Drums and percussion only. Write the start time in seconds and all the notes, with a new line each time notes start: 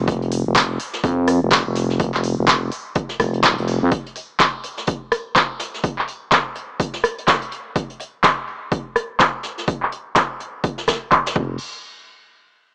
0.08 kick, closed hi-hat
0.22 closed hi-hat
0.31 closed hi-hat, open hi-hat
0.55 kick, snare, clap, closed hi-hat
0.80 closed hi-hat, open hi-hat
0.93 snare
1.04 kick, closed hi-hat
1.27 cross-stick, closed hi-hat, open hi-hat
1.51 kick, snare, clap, closed hi-hat
1.76 snare, closed hi-hat, open hi-hat
1.90 snare
1.99 kick, closed hi-hat
2.14 clap
2.24 closed hi-hat, open hi-hat
2.47 kick, snare, clap, closed hi-hat
2.72 closed hi-hat, open hi-hat
2.95 kick, closed hi-hat
3.09 snare
3.20 kick, cross-stick, closed hi-hat, open hi-hat
3.33 closed hi-hat
3.43 kick, snare, clap, closed hi-hat
3.58 closed hi-hat
3.68 closed hi-hat, open hi-hat
3.91 kick, closed hi-hat
4.06 closed hi-hat
4.16 closed hi-hat, open hi-hat
4.39 kick, snare, clap, closed hi-hat
4.64 closed hi-hat, open hi-hat
4.77 snare
4.87 kick, closed hi-hat
5.11 cross-stick, closed hi-hat, open hi-hat
5.36 kick, snare, clap, closed hi-hat
5.59 snare, closed hi-hat, open hi-hat
5.74 snare
5.84 kick, closed hi-hat
5.99 clap
6.08 closed hi-hat, open hi-hat
6.32 kick, snare, clap, closed hi-hat
6.55 closed hi-hat, open hi-hat
6.80 kick, closed hi-hat
6.94 snare
7.04 cross-stick, closed hi-hat, open hi-hat
7.18 closed hi-hat
7.28 kick, snare, clap, closed hi-hat
7.42 closed hi-hat
7.52 closed hi-hat, open hi-hat
7.76 kick, closed hi-hat
7.90 closed hi-hat
8.00 closed hi-hat, open hi-hat
8.24 kick, snare, clap, closed hi-hat
8.48 open hi-hat
8.72 kick, closed hi-hat
8.96 cross-stick, closed hi-hat, open hi-hat
9.20 kick, snare, clap, closed hi-hat
9.43 snare, closed hi-hat, open hi-hat
9.58 snare
9.67 kick, closed hi-hat
9.83 clap
9.92 closed hi-hat, open hi-hat
10.15 kick, snare, clap, closed hi-hat
10.40 closed hi-hat, open hi-hat
10.64 kick, closed hi-hat
10.78 snare
10.87 kick, cross-stick, snare, closed hi-hat
11.11 kick, clap, closed hi-hat
11.26 snare, closed hi-hat
11.36 kick, crash